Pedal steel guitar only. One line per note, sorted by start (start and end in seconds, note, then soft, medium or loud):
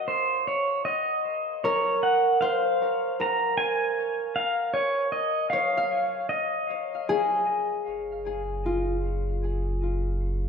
0.00 0.10 D#5 medium
0.08 0.47 C5 medium
0.47 0.84 C#5 medium
0.85 1.64 D#5 loud
1.64 2.04 C#5 medium
2.03 2.40 F#5 medium
2.41 3.22 F5 loud
3.21 3.57 A#5 loud
3.58 4.38 G#5 loud
4.36 4.76 F5 loud
4.74 5.15 C#5 loud
5.12 5.49 D#5 loud
5.50 6.29 F5 loud
6.29 7.43 D#5 medium